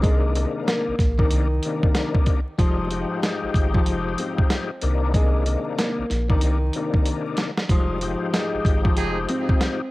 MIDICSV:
0, 0, Header, 1, 6, 480
1, 0, Start_track
1, 0, Key_signature, -4, "minor"
1, 0, Tempo, 638298
1, 26, Time_signature, 4, 2, 24, 8
1, 7452, End_track
2, 0, Start_track
2, 0, Title_t, "Trumpet section"
2, 0, Program_c, 0, 61
2, 6747, Note_on_c, 0, 60, 100
2, 6747, Note_on_c, 0, 63, 103
2, 6747, Note_on_c, 0, 68, 113
2, 6900, Note_off_c, 0, 60, 0
2, 6900, Note_off_c, 0, 63, 0
2, 6900, Note_off_c, 0, 68, 0
2, 7452, End_track
3, 0, Start_track
3, 0, Title_t, "Nylon-string guitar"
3, 0, Program_c, 1, 24
3, 15, Note_on_c, 1, 56, 108
3, 471, Note_off_c, 1, 56, 0
3, 506, Note_on_c, 1, 58, 91
3, 870, Note_off_c, 1, 58, 0
3, 891, Note_on_c, 1, 51, 87
3, 1582, Note_off_c, 1, 51, 0
3, 1946, Note_on_c, 1, 53, 111
3, 2397, Note_off_c, 1, 53, 0
3, 2424, Note_on_c, 1, 56, 85
3, 2789, Note_off_c, 1, 56, 0
3, 2815, Note_on_c, 1, 53, 89
3, 3127, Note_off_c, 1, 53, 0
3, 3152, Note_on_c, 1, 60, 99
3, 3839, Note_off_c, 1, 60, 0
3, 3874, Note_on_c, 1, 56, 106
3, 4321, Note_off_c, 1, 56, 0
3, 4344, Note_on_c, 1, 58, 84
3, 4709, Note_off_c, 1, 58, 0
3, 4733, Note_on_c, 1, 51, 91
3, 5423, Note_off_c, 1, 51, 0
3, 5798, Note_on_c, 1, 53, 116
3, 6243, Note_off_c, 1, 53, 0
3, 6266, Note_on_c, 1, 56, 97
3, 6630, Note_off_c, 1, 56, 0
3, 6655, Note_on_c, 1, 53, 85
3, 6966, Note_off_c, 1, 53, 0
3, 6987, Note_on_c, 1, 60, 91
3, 7452, Note_off_c, 1, 60, 0
3, 7452, End_track
4, 0, Start_track
4, 0, Title_t, "Tonewheel organ"
4, 0, Program_c, 2, 16
4, 22, Note_on_c, 2, 48, 102
4, 26, Note_on_c, 2, 51, 85
4, 31, Note_on_c, 2, 58, 91
4, 34, Note_on_c, 2, 62, 113
4, 249, Note_off_c, 2, 48, 0
4, 251, Note_off_c, 2, 51, 0
4, 253, Note_off_c, 2, 58, 0
4, 255, Note_off_c, 2, 62, 0
4, 261, Note_on_c, 2, 48, 94
4, 266, Note_on_c, 2, 51, 85
4, 268, Note_on_c, 2, 58, 83
4, 273, Note_on_c, 2, 62, 100
4, 714, Note_off_c, 2, 48, 0
4, 716, Note_off_c, 2, 51, 0
4, 717, Note_off_c, 2, 58, 0
4, 720, Note_off_c, 2, 62, 0
4, 886, Note_on_c, 2, 48, 91
4, 889, Note_on_c, 2, 51, 89
4, 894, Note_on_c, 2, 58, 81
4, 897, Note_on_c, 2, 62, 107
4, 1106, Note_off_c, 2, 48, 0
4, 1108, Note_off_c, 2, 51, 0
4, 1110, Note_off_c, 2, 58, 0
4, 1112, Note_off_c, 2, 62, 0
4, 1241, Note_on_c, 2, 48, 95
4, 1244, Note_on_c, 2, 51, 86
4, 1248, Note_on_c, 2, 58, 86
4, 1252, Note_on_c, 2, 62, 105
4, 1802, Note_off_c, 2, 48, 0
4, 1804, Note_off_c, 2, 51, 0
4, 1806, Note_off_c, 2, 58, 0
4, 1808, Note_off_c, 2, 62, 0
4, 1939, Note_on_c, 2, 44, 94
4, 1943, Note_on_c, 2, 53, 82
4, 1946, Note_on_c, 2, 55, 92
4, 1951, Note_on_c, 2, 63, 105
4, 2167, Note_off_c, 2, 44, 0
4, 2169, Note_off_c, 2, 53, 0
4, 2171, Note_off_c, 2, 55, 0
4, 2173, Note_off_c, 2, 63, 0
4, 2184, Note_on_c, 2, 44, 103
4, 2188, Note_on_c, 2, 53, 86
4, 2192, Note_on_c, 2, 67, 90
4, 2196, Note_on_c, 2, 63, 104
4, 3537, Note_off_c, 2, 44, 0
4, 3539, Note_off_c, 2, 53, 0
4, 3540, Note_off_c, 2, 67, 0
4, 3543, Note_off_c, 2, 63, 0
4, 3623, Note_on_c, 2, 48, 91
4, 3626, Note_on_c, 2, 51, 87
4, 3631, Note_on_c, 2, 58, 83
4, 3634, Note_on_c, 2, 62, 112
4, 3849, Note_off_c, 2, 48, 0
4, 3851, Note_off_c, 2, 51, 0
4, 3853, Note_off_c, 2, 58, 0
4, 3855, Note_off_c, 2, 62, 0
4, 3862, Note_on_c, 2, 48, 102
4, 3867, Note_on_c, 2, 51, 90
4, 3870, Note_on_c, 2, 58, 88
4, 3875, Note_on_c, 2, 62, 109
4, 4089, Note_off_c, 2, 48, 0
4, 4091, Note_off_c, 2, 51, 0
4, 4093, Note_off_c, 2, 58, 0
4, 4095, Note_off_c, 2, 62, 0
4, 4100, Note_on_c, 2, 48, 97
4, 4104, Note_on_c, 2, 51, 88
4, 4108, Note_on_c, 2, 58, 88
4, 4113, Note_on_c, 2, 62, 101
4, 4554, Note_off_c, 2, 48, 0
4, 4556, Note_off_c, 2, 51, 0
4, 4557, Note_off_c, 2, 58, 0
4, 4560, Note_off_c, 2, 62, 0
4, 4726, Note_on_c, 2, 48, 93
4, 4730, Note_on_c, 2, 51, 90
4, 4735, Note_on_c, 2, 58, 84
4, 4739, Note_on_c, 2, 62, 103
4, 4946, Note_off_c, 2, 48, 0
4, 4948, Note_off_c, 2, 51, 0
4, 4950, Note_off_c, 2, 58, 0
4, 4952, Note_off_c, 2, 62, 0
4, 5081, Note_on_c, 2, 48, 94
4, 5084, Note_on_c, 2, 51, 82
4, 5089, Note_on_c, 2, 58, 87
4, 5094, Note_on_c, 2, 62, 102
4, 5642, Note_off_c, 2, 48, 0
4, 5644, Note_off_c, 2, 51, 0
4, 5646, Note_off_c, 2, 58, 0
4, 5648, Note_off_c, 2, 62, 0
4, 5781, Note_on_c, 2, 44, 92
4, 5785, Note_on_c, 2, 53, 84
4, 5789, Note_on_c, 2, 55, 89
4, 5793, Note_on_c, 2, 63, 102
4, 6009, Note_off_c, 2, 44, 0
4, 6010, Note_off_c, 2, 53, 0
4, 6012, Note_off_c, 2, 55, 0
4, 6015, Note_off_c, 2, 63, 0
4, 6025, Note_on_c, 2, 44, 101
4, 6030, Note_on_c, 2, 53, 82
4, 6034, Note_on_c, 2, 67, 91
4, 6037, Note_on_c, 2, 63, 100
4, 7377, Note_off_c, 2, 44, 0
4, 7379, Note_off_c, 2, 53, 0
4, 7381, Note_off_c, 2, 67, 0
4, 7383, Note_off_c, 2, 63, 0
4, 7452, End_track
5, 0, Start_track
5, 0, Title_t, "Sub bass"
5, 0, Program_c, 3, 38
5, 0, Note_on_c, 3, 36, 102
5, 342, Note_off_c, 3, 36, 0
5, 659, Note_on_c, 3, 34, 51
5, 695, Note_off_c, 3, 34, 0
5, 746, Note_on_c, 3, 34, 101
5, 958, Note_off_c, 3, 34, 0
5, 992, Note_on_c, 3, 36, 99
5, 1201, Note_off_c, 3, 36, 0
5, 1948, Note_on_c, 3, 29, 106
5, 2289, Note_off_c, 3, 29, 0
5, 2578, Note_on_c, 3, 32, 51
5, 2613, Note_off_c, 3, 32, 0
5, 2666, Note_on_c, 3, 32, 100
5, 2911, Note_on_c, 3, 29, 100
5, 2922, Note_off_c, 3, 32, 0
5, 3120, Note_off_c, 3, 29, 0
5, 3630, Note_on_c, 3, 36, 102
5, 4182, Note_off_c, 3, 36, 0
5, 4498, Note_on_c, 3, 34, 51
5, 4534, Note_off_c, 3, 34, 0
5, 4591, Note_on_c, 3, 34, 104
5, 4800, Note_off_c, 3, 34, 0
5, 4831, Note_on_c, 3, 36, 99
5, 5040, Note_off_c, 3, 36, 0
5, 5787, Note_on_c, 3, 29, 110
5, 6129, Note_off_c, 3, 29, 0
5, 6419, Note_on_c, 3, 32, 51
5, 6454, Note_off_c, 3, 32, 0
5, 6506, Note_on_c, 3, 32, 103
5, 6751, Note_on_c, 3, 29, 98
5, 6762, Note_off_c, 3, 32, 0
5, 6960, Note_off_c, 3, 29, 0
5, 7452, End_track
6, 0, Start_track
6, 0, Title_t, "Drums"
6, 26, Note_on_c, 9, 36, 107
6, 27, Note_on_c, 9, 42, 87
6, 101, Note_off_c, 9, 36, 0
6, 102, Note_off_c, 9, 42, 0
6, 266, Note_on_c, 9, 42, 79
6, 341, Note_off_c, 9, 42, 0
6, 510, Note_on_c, 9, 38, 111
6, 512, Note_on_c, 9, 42, 101
6, 586, Note_off_c, 9, 38, 0
6, 587, Note_off_c, 9, 42, 0
6, 744, Note_on_c, 9, 36, 96
6, 747, Note_on_c, 9, 38, 39
6, 752, Note_on_c, 9, 42, 69
6, 819, Note_off_c, 9, 36, 0
6, 822, Note_off_c, 9, 38, 0
6, 827, Note_off_c, 9, 42, 0
6, 895, Note_on_c, 9, 36, 94
6, 970, Note_off_c, 9, 36, 0
6, 983, Note_on_c, 9, 42, 105
6, 1058, Note_off_c, 9, 42, 0
6, 1224, Note_on_c, 9, 42, 84
6, 1299, Note_off_c, 9, 42, 0
6, 1377, Note_on_c, 9, 36, 103
6, 1452, Note_off_c, 9, 36, 0
6, 1464, Note_on_c, 9, 38, 120
6, 1466, Note_on_c, 9, 42, 106
6, 1539, Note_off_c, 9, 38, 0
6, 1541, Note_off_c, 9, 42, 0
6, 1613, Note_on_c, 9, 36, 106
6, 1689, Note_off_c, 9, 36, 0
6, 1701, Note_on_c, 9, 42, 72
6, 1704, Note_on_c, 9, 36, 89
6, 1776, Note_off_c, 9, 42, 0
6, 1779, Note_off_c, 9, 36, 0
6, 1946, Note_on_c, 9, 36, 109
6, 1948, Note_on_c, 9, 42, 91
6, 2021, Note_off_c, 9, 36, 0
6, 2024, Note_off_c, 9, 42, 0
6, 2186, Note_on_c, 9, 42, 81
6, 2261, Note_off_c, 9, 42, 0
6, 2431, Note_on_c, 9, 38, 106
6, 2432, Note_on_c, 9, 42, 98
6, 2506, Note_off_c, 9, 38, 0
6, 2508, Note_off_c, 9, 42, 0
6, 2664, Note_on_c, 9, 36, 93
6, 2673, Note_on_c, 9, 42, 69
6, 2740, Note_off_c, 9, 36, 0
6, 2749, Note_off_c, 9, 42, 0
6, 2815, Note_on_c, 9, 36, 95
6, 2891, Note_off_c, 9, 36, 0
6, 2904, Note_on_c, 9, 42, 103
6, 2979, Note_off_c, 9, 42, 0
6, 3144, Note_on_c, 9, 42, 84
6, 3219, Note_off_c, 9, 42, 0
6, 3297, Note_on_c, 9, 36, 99
6, 3372, Note_off_c, 9, 36, 0
6, 3385, Note_on_c, 9, 38, 120
6, 3386, Note_on_c, 9, 42, 103
6, 3460, Note_off_c, 9, 38, 0
6, 3462, Note_off_c, 9, 42, 0
6, 3621, Note_on_c, 9, 42, 73
6, 3696, Note_off_c, 9, 42, 0
6, 3865, Note_on_c, 9, 36, 113
6, 3867, Note_on_c, 9, 42, 90
6, 3940, Note_off_c, 9, 36, 0
6, 3942, Note_off_c, 9, 42, 0
6, 4105, Note_on_c, 9, 42, 79
6, 4180, Note_off_c, 9, 42, 0
6, 4350, Note_on_c, 9, 38, 109
6, 4351, Note_on_c, 9, 42, 103
6, 4425, Note_off_c, 9, 38, 0
6, 4426, Note_off_c, 9, 42, 0
6, 4587, Note_on_c, 9, 38, 37
6, 4593, Note_on_c, 9, 42, 68
6, 4662, Note_off_c, 9, 38, 0
6, 4668, Note_off_c, 9, 42, 0
6, 4735, Note_on_c, 9, 36, 97
6, 4810, Note_off_c, 9, 36, 0
6, 4822, Note_on_c, 9, 42, 104
6, 4897, Note_off_c, 9, 42, 0
6, 5063, Note_on_c, 9, 42, 85
6, 5138, Note_off_c, 9, 42, 0
6, 5217, Note_on_c, 9, 36, 99
6, 5292, Note_off_c, 9, 36, 0
6, 5306, Note_on_c, 9, 42, 106
6, 5381, Note_off_c, 9, 42, 0
6, 5541, Note_on_c, 9, 42, 72
6, 5548, Note_on_c, 9, 38, 102
6, 5616, Note_off_c, 9, 42, 0
6, 5623, Note_off_c, 9, 38, 0
6, 5696, Note_on_c, 9, 38, 101
6, 5771, Note_off_c, 9, 38, 0
6, 5785, Note_on_c, 9, 36, 109
6, 5787, Note_on_c, 9, 42, 88
6, 5860, Note_off_c, 9, 36, 0
6, 5862, Note_off_c, 9, 42, 0
6, 6025, Note_on_c, 9, 42, 78
6, 6100, Note_off_c, 9, 42, 0
6, 6269, Note_on_c, 9, 38, 109
6, 6271, Note_on_c, 9, 42, 96
6, 6345, Note_off_c, 9, 38, 0
6, 6346, Note_off_c, 9, 42, 0
6, 6504, Note_on_c, 9, 36, 96
6, 6513, Note_on_c, 9, 42, 70
6, 6579, Note_off_c, 9, 36, 0
6, 6588, Note_off_c, 9, 42, 0
6, 6655, Note_on_c, 9, 36, 95
6, 6730, Note_off_c, 9, 36, 0
6, 6743, Note_on_c, 9, 42, 104
6, 6818, Note_off_c, 9, 42, 0
6, 6983, Note_on_c, 9, 42, 84
6, 7058, Note_off_c, 9, 42, 0
6, 7137, Note_on_c, 9, 36, 102
6, 7212, Note_off_c, 9, 36, 0
6, 7225, Note_on_c, 9, 38, 120
6, 7226, Note_on_c, 9, 42, 103
6, 7300, Note_off_c, 9, 38, 0
6, 7302, Note_off_c, 9, 42, 0
6, 7452, End_track
0, 0, End_of_file